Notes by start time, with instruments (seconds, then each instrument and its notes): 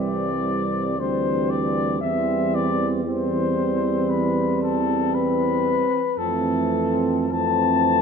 Already playing: tuba C2, trombone E3, euphonium G3, french horn section C4
0.00 flugelhorn D5
0.98 tuba D2, trombone E3, euphonium G3, french horn section C4, flugelhorn C5
1.50 flugelhorn D5
2.00 tuba E2, trombone E3, euphonium G3, french horn section C4, flugelhorn E5
2.54 flugelhorn D5
3.04 trombone E3, euphonium G3, french horn section C4, flugelhorn C5
4.09 flugelhorn B4
4.62 flugelhorn A4
5.14 flugelhorn B4
6.18 tuba F2, trombone E3, euphonium A3, french horn section C4, flugelhorn A4
7.30 trombone E3, euphonium A3, french horn section C4, flugelhorn A5